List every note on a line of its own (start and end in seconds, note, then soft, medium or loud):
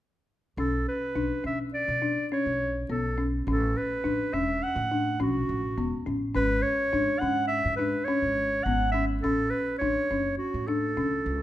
0.57 0.84 B1 medium
0.57 0.96 C#4 medium
0.57 0.85 A4 medium
0.88 1.41 B4 medium
1.15 1.29 B1 medium
1.15 1.35 D4 medium
1.44 1.84 B2 medium
1.44 1.82 C#4 medium
1.44 1.59 E5 medium
1.74 2.27 D5 medium
1.88 2.14 B2 medium
2.02 2.21 D4 medium
2.32 2.70 C#4 medium
2.32 2.86 C#5 medium
2.46 2.86 B1 medium
2.89 3.43 B1 medium
2.89 3.09 B3 medium
2.89 3.30 A4 medium
3.18 3.37 C#4 medium
3.47 3.73 A1 medium
3.47 3.86 C#4 medium
3.47 3.79 A4 medium
3.77 4.35 B4 medium
4.04 4.18 A1 medium
4.04 4.23 D4 medium
4.33 4.60 E1 medium
4.33 4.72 C#4 medium
4.33 4.64 E5 medium
4.63 5.20 F#5 medium
4.76 5.22 A2 medium
4.91 5.11 D4 medium
5.20 5.47 B1 medium
5.20 5.58 C#4 medium
5.20 6.04 F#4 medium
5.49 5.75 A1 medium
5.78 5.91 E1 medium
5.78 5.97 B3 medium
6.06 6.33 A1 medium
6.06 6.25 C#4 medium
6.35 6.62 G#1 medium
6.35 6.73 C#4 medium
6.35 6.64 B4 medium
6.62 7.21 C#5 medium
6.93 7.07 G#1 medium
6.93 7.12 D4 medium
7.19 7.62 G#2 medium
7.19 7.60 C#4 medium
7.19 7.47 F#5 medium
7.47 7.76 E5 medium
7.65 7.92 G#2 medium
7.76 7.98 D4 medium
7.76 8.06 B4 medium
8.04 8.46 C#4 medium
8.04 8.65 C#5 medium
8.22 8.62 G#1 medium
8.64 9.20 G#1 medium
8.64 8.85 B3 medium
8.64 8.91 F#5 medium
8.92 9.14 C#4 medium
8.92 9.06 E5 medium
9.22 9.50 A1 medium
9.22 9.62 C#4 medium
9.22 9.52 A4 medium
9.50 9.78 B4 medium
9.79 9.95 A1 medium
9.79 10.01 D4 medium
9.79 10.34 C#5 medium
10.11 10.37 F#1 medium
10.11 10.49 C#4 medium
10.38 10.68 F#4 medium
10.54 10.98 A2 medium
10.67 10.87 D4 medium
10.67 11.42 A4 medium
10.97 11.23 C#2 medium
10.97 11.35 C#4 medium
11.26 11.42 C#2 medium